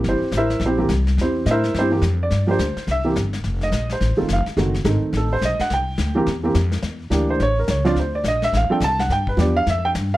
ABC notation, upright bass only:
X:1
M:4/4
L:1/8
Q:"Swing" 1/4=212
K:Cmix
V:1 name="Upright bass" clef=bass
G,,, z A,,,2 B,,,2 C,,2 | E,,2 A,,2 G,,2 F,,2 | G,,2 D,, z C,,2 G,,,2 | F,,,2 B,,,2 (3A,,, F,,, _E,,, F,,, z |
^F,,,2 _A,,, z =A,,,2 =B,,, z | C,,2 D,,2 E,,2 F,,2 | E,,2 D,,2 A,,,2 ^C,,2 | D,,2 B,,,2 A,,, z C,,2 |
G,,2 E,,2 F,,2 G,,2 |]